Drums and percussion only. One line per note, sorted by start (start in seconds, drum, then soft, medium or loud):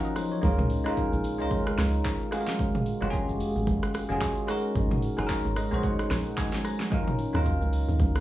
0.05 shaker medium
0.16 cross-stick medium
0.16 open hi-hat medium
0.16 shaker loud
0.43 kick loud
0.43 shaker medium
0.59 mid tom loud
0.59 shaker soft
0.70 open hi-hat soft
0.70 shaker medium
0.86 cross-stick loud
0.86 shaker soft
0.97 kick medium
0.97 shaker medium
1.13 shaker medium
1.24 open hi-hat soft
1.24 shaker medium
1.40 shaker medium
1.51 kick loud
1.51 shaker medium
1.67 cross-stick loud
1.67 shaker medium
1.78 cross-stick loud
1.78 snare medium
1.78 open hi-hat medium
1.78 shaker loud
1.94 shaker medium
2.05 kick loud
2.05 clap loud
2.05 shaker medium
2.21 shaker medium
2.32 cross-stick loud
2.32 open hi-hat medium
2.32 shaker loud
2.47 snare medium
2.59 kick loud
2.59 shaker medium
2.75 mid tom medium
2.75 shaker soft
2.86 open hi-hat soft
2.86 shaker medium
3.02 cross-stick medium
3.02 shaker medium
3.13 kick medium
3.13 shaker medium
3.29 shaker medium
3.40 open hi-hat medium
3.40 shaker medium
3.56 shaker medium
3.67 kick loud
3.67 shaker medium
3.83 cross-stick loud
3.83 shaker medium
3.94 cross-stick loud
3.94 open hi-hat medium
3.94 shaker loud
4.10 shaker medium
4.21 kick loud
4.21 clap loud
4.21 shaker medium
4.37 shaker medium
4.48 cross-stick loud
4.48 open hi-hat medium
4.48 shaker medium
4.76 kick loud
4.76 shaker medium
4.91 mid tom loud
4.91 shaker soft
5.02 open hi-hat soft
5.02 shaker medium
5.18 cross-stick medium
5.18 shaker medium
5.30 kick medium
5.30 clap loud
5.30 shaker medium
5.45 shaker medium
5.56 cross-stick loud
5.56 open hi-hat soft
5.56 shaker medium
5.72 shaker medium
5.83 kick loud
5.83 shaker medium
5.99 cross-stick loud
5.99 shaker medium
6.11 cross-stick loud
6.11 snare medium
6.11 open hi-hat medium
6.11 shaker loud
6.26 shaker medium
6.38 kick loud
6.38 clap loud
6.38 shaker medium
6.53 snare medium
6.53 shaker medium
6.65 cross-stick medium
6.65 open hi-hat medium
6.65 shaker loud
6.80 snare medium
6.80 shaker medium
6.92 kick loud
6.92 shaker medium
7.08 mid tom medium
7.08 shaker soft
7.19 open hi-hat soft
7.19 shaker medium
7.35 cross-stick medium
7.35 shaker medium
7.46 kick medium
7.46 shaker medium
7.61 shaker medium
7.73 open hi-hat soft
7.73 shaker medium
7.89 shaker medium
8.00 kick loud
8.00 shaker medium
8.16 cross-stick loud
8.16 shaker medium